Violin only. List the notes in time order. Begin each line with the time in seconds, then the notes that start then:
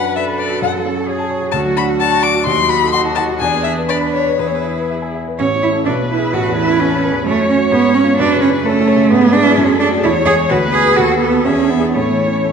Already playing: F#5
0.16 E5
0.39 D5
0.63 F#5
1.52 A5
1.77 B5
2.00 A5
2.23 D6
2.47 C6
2.69 B5
2.92 C6
3.15 A5
3.39 G#5
3.64 E5
3.89 D5
4.13 C#5
4.39 B4
4.47 C#5
4.54 B4
5.41 C#5
5.88 B4
6.34 A4
6.82 A4
7.04 B4
7.28 C#5
7.72 C#5
8.19 B4
8.65 A4
8.88 C#5
9.11 B4
9.59 A4
10.04 C#5
10.50 B4
10.98 B4
11.46 E5
11.93 C#5